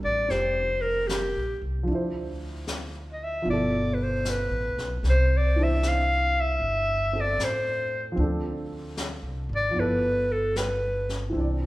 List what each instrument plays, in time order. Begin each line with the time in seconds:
Already playing: grand piano G3 C4 D4 A#4
0.04 upright bass A1, clarinet D5
0.28 upright bass F1, grand piano C4 G4, clarinet C5, brush sweep, snare
0.81 clarinet A#4
1.07 clarinet G4, snare, hi-hat pedal
1.36 upright bass A#1
1.62 upright bass C2
1.83 grand piano F3 D4
1.88 upright bass D2, grand piano E4, brush sweep
1.95 grand piano C5
2.67 snare, hi-hat pedal
3.12 clarinet D#5
3.24 clarinet E5
3.42 upright bass G1, grand piano B2 F3
3.46 grand piano E4, clarinet D5, brush sweep
3.53 grand piano A4
3.94 clarinet B4
4.03 clarinet C5
4.25 snare, hi-hat pedal
4.29 clarinet B4
4.50 upright bass A1
4.76 upright bass B1, snare
5.03 upright bass C2, brush sweep, snare
5.09 clarinet C5
5.37 clarinet D5
5.56 grand piano E3 C4 D4
5.62 grand piano C5, clarinet E5
5.83 snare, hi-hat pedal
5.88 clarinet F5
6.41 clarinet E5
6.60 upright bass G1, brush sweep
7.13 grand piano C4 A4
7.21 clarinet D5
7.38 upright bass A2, snare, hi-hat pedal
7.44 clarinet C5
8.12 grand piano F3
8.16 upright bass D2, grand piano C4 D4, brush sweep
8.23 grand piano A4
8.97 snare, hi-hat pedal
9.22 upright bass C2
9.49 upright bass G#1
9.56 clarinet D5
9.71 grand piano F3 B3
9.76 upright bass G1, grand piano E4, clarinet B4, brush sweep
9.81 grand piano A4
10.32 clarinet A4
10.56 clarinet B4, snare, hi-hat pedal
11.09 snare
11.30 grand piano E3 C4
11.35 upright bass C2, grand piano D4, brush sweep
11.40 grand piano D5